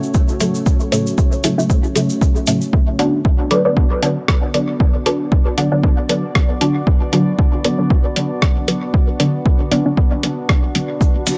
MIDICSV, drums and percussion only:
0, 0, Header, 1, 2, 480
1, 0, Start_track
1, 0, Key_signature, 2, "minor"
1, 0, Tempo, 517241
1, 615, Time_signature, 4, 2, 24, 8
1, 10559, End_track
2, 0, Start_track
2, 0, Title_t, "Drums"
2, 30, Note_on_c, 9, 69, 37
2, 123, Note_off_c, 9, 69, 0
2, 131, Note_on_c, 9, 69, 53
2, 134, Note_on_c, 9, 36, 114
2, 224, Note_off_c, 9, 69, 0
2, 227, Note_off_c, 9, 36, 0
2, 264, Note_on_c, 9, 69, 23
2, 357, Note_off_c, 9, 69, 0
2, 374, Note_on_c, 9, 69, 81
2, 375, Note_on_c, 9, 42, 78
2, 467, Note_off_c, 9, 69, 0
2, 468, Note_off_c, 9, 42, 0
2, 507, Note_on_c, 9, 69, 41
2, 600, Note_off_c, 9, 69, 0
2, 614, Note_on_c, 9, 36, 117
2, 615, Note_on_c, 9, 69, 50
2, 707, Note_off_c, 9, 36, 0
2, 708, Note_off_c, 9, 69, 0
2, 743, Note_on_c, 9, 69, 24
2, 836, Note_off_c, 9, 69, 0
2, 855, Note_on_c, 9, 42, 81
2, 861, Note_on_c, 9, 69, 84
2, 948, Note_off_c, 9, 42, 0
2, 954, Note_off_c, 9, 69, 0
2, 990, Note_on_c, 9, 69, 40
2, 1082, Note_off_c, 9, 69, 0
2, 1094, Note_on_c, 9, 36, 111
2, 1096, Note_on_c, 9, 69, 48
2, 1187, Note_off_c, 9, 36, 0
2, 1188, Note_off_c, 9, 69, 0
2, 1225, Note_on_c, 9, 69, 26
2, 1318, Note_off_c, 9, 69, 0
2, 1335, Note_on_c, 9, 42, 83
2, 1335, Note_on_c, 9, 69, 97
2, 1427, Note_off_c, 9, 69, 0
2, 1428, Note_off_c, 9, 42, 0
2, 1477, Note_on_c, 9, 69, 36
2, 1570, Note_off_c, 9, 69, 0
2, 1575, Note_on_c, 9, 36, 114
2, 1575, Note_on_c, 9, 69, 47
2, 1667, Note_off_c, 9, 36, 0
2, 1668, Note_off_c, 9, 69, 0
2, 1706, Note_on_c, 9, 69, 24
2, 1799, Note_off_c, 9, 69, 0
2, 1815, Note_on_c, 9, 42, 83
2, 1819, Note_on_c, 9, 69, 95
2, 1907, Note_off_c, 9, 42, 0
2, 1912, Note_off_c, 9, 69, 0
2, 1944, Note_on_c, 9, 69, 40
2, 2036, Note_off_c, 9, 69, 0
2, 2055, Note_on_c, 9, 36, 115
2, 2060, Note_on_c, 9, 69, 49
2, 2148, Note_off_c, 9, 36, 0
2, 2153, Note_off_c, 9, 69, 0
2, 2189, Note_on_c, 9, 69, 25
2, 2282, Note_off_c, 9, 69, 0
2, 2290, Note_on_c, 9, 69, 95
2, 2295, Note_on_c, 9, 42, 79
2, 2383, Note_off_c, 9, 69, 0
2, 2388, Note_off_c, 9, 42, 0
2, 2426, Note_on_c, 9, 69, 37
2, 2518, Note_off_c, 9, 69, 0
2, 2535, Note_on_c, 9, 36, 122
2, 2628, Note_off_c, 9, 36, 0
2, 2776, Note_on_c, 9, 42, 83
2, 2868, Note_off_c, 9, 42, 0
2, 3015, Note_on_c, 9, 36, 115
2, 3108, Note_off_c, 9, 36, 0
2, 3255, Note_on_c, 9, 42, 84
2, 3348, Note_off_c, 9, 42, 0
2, 3495, Note_on_c, 9, 36, 117
2, 3588, Note_off_c, 9, 36, 0
2, 3735, Note_on_c, 9, 42, 85
2, 3828, Note_off_c, 9, 42, 0
2, 3975, Note_on_c, 9, 36, 120
2, 3975, Note_on_c, 9, 37, 102
2, 4068, Note_off_c, 9, 36, 0
2, 4068, Note_off_c, 9, 37, 0
2, 4215, Note_on_c, 9, 42, 82
2, 4308, Note_off_c, 9, 42, 0
2, 4455, Note_on_c, 9, 36, 127
2, 4548, Note_off_c, 9, 36, 0
2, 4696, Note_on_c, 9, 42, 85
2, 4789, Note_off_c, 9, 42, 0
2, 4935, Note_on_c, 9, 36, 124
2, 5028, Note_off_c, 9, 36, 0
2, 5175, Note_on_c, 9, 42, 89
2, 5268, Note_off_c, 9, 42, 0
2, 5415, Note_on_c, 9, 36, 124
2, 5508, Note_off_c, 9, 36, 0
2, 5655, Note_on_c, 9, 42, 89
2, 5748, Note_off_c, 9, 42, 0
2, 5895, Note_on_c, 9, 36, 127
2, 5895, Note_on_c, 9, 37, 98
2, 5987, Note_off_c, 9, 36, 0
2, 5988, Note_off_c, 9, 37, 0
2, 6135, Note_on_c, 9, 42, 88
2, 6228, Note_off_c, 9, 42, 0
2, 6375, Note_on_c, 9, 36, 127
2, 6467, Note_off_c, 9, 36, 0
2, 6615, Note_on_c, 9, 42, 91
2, 6708, Note_off_c, 9, 42, 0
2, 6855, Note_on_c, 9, 36, 127
2, 6947, Note_off_c, 9, 36, 0
2, 7094, Note_on_c, 9, 42, 88
2, 7187, Note_off_c, 9, 42, 0
2, 7334, Note_on_c, 9, 36, 125
2, 7427, Note_off_c, 9, 36, 0
2, 7575, Note_on_c, 9, 42, 89
2, 7668, Note_off_c, 9, 42, 0
2, 7814, Note_on_c, 9, 36, 127
2, 7815, Note_on_c, 9, 37, 95
2, 7907, Note_off_c, 9, 36, 0
2, 7908, Note_off_c, 9, 37, 0
2, 8056, Note_on_c, 9, 42, 89
2, 8148, Note_off_c, 9, 42, 0
2, 8295, Note_on_c, 9, 36, 127
2, 8388, Note_off_c, 9, 36, 0
2, 8535, Note_on_c, 9, 42, 88
2, 8628, Note_off_c, 9, 42, 0
2, 8775, Note_on_c, 9, 36, 123
2, 8868, Note_off_c, 9, 36, 0
2, 9016, Note_on_c, 9, 42, 88
2, 9108, Note_off_c, 9, 42, 0
2, 9255, Note_on_c, 9, 36, 120
2, 9348, Note_off_c, 9, 36, 0
2, 9496, Note_on_c, 9, 42, 89
2, 9589, Note_off_c, 9, 42, 0
2, 9735, Note_on_c, 9, 36, 126
2, 9736, Note_on_c, 9, 37, 94
2, 9828, Note_off_c, 9, 36, 0
2, 9829, Note_off_c, 9, 37, 0
2, 9976, Note_on_c, 9, 42, 89
2, 10069, Note_off_c, 9, 42, 0
2, 10215, Note_on_c, 9, 36, 124
2, 10219, Note_on_c, 9, 69, 43
2, 10308, Note_off_c, 9, 36, 0
2, 10312, Note_off_c, 9, 69, 0
2, 10455, Note_on_c, 9, 42, 86
2, 10455, Note_on_c, 9, 51, 63
2, 10455, Note_on_c, 9, 69, 93
2, 10548, Note_off_c, 9, 42, 0
2, 10548, Note_off_c, 9, 51, 0
2, 10548, Note_off_c, 9, 69, 0
2, 10559, End_track
0, 0, End_of_file